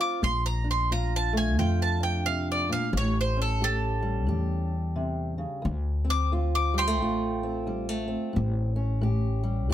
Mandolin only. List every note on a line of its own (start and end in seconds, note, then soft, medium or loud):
0.01 0.22 D6 medium
0.24 0.45 C6 medium
0.46 0.68 A#5 medium
0.71 0.91 C6 medium
0.92 1.13 A#5 medium
1.16 1.37 A5 medium
1.37 1.58 G#5 medium
1.59 1.81 G5 medium
1.82 2.03 A5 medium
2.03 2.25 G5 medium
2.26 2.48 F5 loud
2.52 2.72 D5 medium
2.72 2.94 F5 loud
2.97 3.18 C#5 loud
3.21 3.41 C5 medium
3.42 3.62 A4 medium
3.64 5.62 A4 loud
6.10 6.32 D6 loud
6.55 6.77 D6 loud
6.78 8.09 G5 loud
6.78 8.09 C6 loud